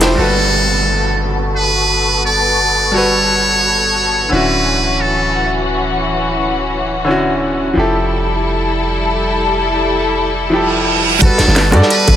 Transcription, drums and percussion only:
0.01 snare loud
0.01 open hi-hat medium
0.01 high bongo medium
11.21 kick loud
11.21 closed hi-hat loud
11.38 kick medium
11.38 snare medium
11.38 closed hi-hat medium
11.48 snare soft
11.48 high bongo soft
11.56 snare loud
11.56 closed hi-hat loud
11.56 open hi-hat medium
11.72 cross-stick medium
11.72 closed hi-hat medium
11.72 high bongo medium
11.82 snare medium
11.90 closed hi-hat medium
11.90 closed hi-hat loud
11.99 closed hi-hat soft
12.07 kick loud
12.07 closed hi-hat medium
12.07 high bongo medium

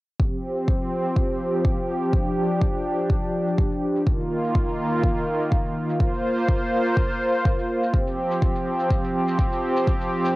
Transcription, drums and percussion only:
0.20 kick loud
0.20 shaker medium
0.33 shaker soft
0.57 shaker medium
0.68 kick loud
0.68 shaker medium
0.82 shaker soft
1.06 shaker medium
1.16 kick loud
1.30 shaker soft
1.54 shaker medium
1.65 kick loud
1.78 shaker soft
2.02 shaker medium
2.13 kick loud
2.27 shaker soft
2.51 shaker medium
2.62 kick loud
2.62 shaker medium
2.75 shaker soft
2.99 shaker medium
3.10 kick loud
3.10 shaker medium
3.23 shaker soft
3.48 shaker medium
3.58 kick loud
3.58 shaker medium
3.72 shaker soft
3.96 shaker medium
4.07 kick loud
4.07 shaker medium
4.20 shaker soft
4.44 shaker medium
4.55 kick loud
4.55 shaker medium
4.68 shaker soft
4.93 shaker medium
5.03 kick loud
5.03 shaker medium
5.17 shaker soft
5.41 shaker medium
5.52 kick loud
5.52 shaker medium
5.65 shaker soft
5.90 shaker medium
6.00 kick loud
6.00 shaker medium
6.14 shaker soft
6.38 shaker medium
6.48 kick loud
6.48 shaker medium
6.62 shaker soft
6.86 shaker medium
6.97 kick loud
6.97 shaker medium
7.11 shaker soft
7.35 shaker medium
7.45 kick loud
7.45 shaker medium
7.59 shaker soft
7.83 shaker medium
7.94 kick loud
7.94 shaker medium
8.07 shaker soft
8.31 shaker medium
8.42 kick loud
8.42 shaker medium
8.55 shaker soft
8.80 shaker medium
8.90 kick loud
8.90 shaker medium
9.04 shaker soft
9.28 shaker medium
9.39 kick loud
9.39 shaker medium
9.52 shaker soft
9.76 shaker medium
9.87 kick loud
9.87 shaker medium
10.01 shaker soft
10.25 shaker medium

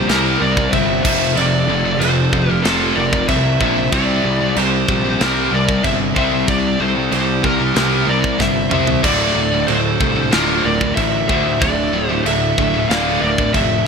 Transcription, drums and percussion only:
0.09 snare loud
0.09 china medium
0.57 kick medium
0.73 kick medium
0.73 china medium
1.05 kick loud
1.05 crash loud
1.37 china medium
2.01 china medium
2.33 kick medium
2.65 snare loud
2.65 china medium
3.13 kick medium
3.29 kick medium
3.29 china medium
3.61 kick medium
3.92 kick loud
3.92 china medium
4.56 china medium
4.88 kick medium
5.21 snare loud
5.21 china medium
5.69 kick medium
5.84 kick medium
5.84 china medium
6.16 kick medium
6.48 kick loud
6.48 china medium
7.12 china medium
7.44 kick medium
7.76 snare loud
7.76 china medium
8.24 kick medium
8.40 kick medium
8.40 snare medium
8.71 mid tom medium
8.87 floor tom medium
9.04 kick loud
9.04 china medium
9.04 crash loud
9.68 china medium
10.01 kick medium
10.32 snare loud
10.32 china medium
10.81 kick medium
10.97 kick medium
10.97 china medium
11.29 kick medium
11.62 kick loud
11.62 china medium
12.26 china medium
12.58 kick medium
12.91 snare loud
12.91 china medium
13.38 kick medium
13.54 kick medium
13.54 china medium

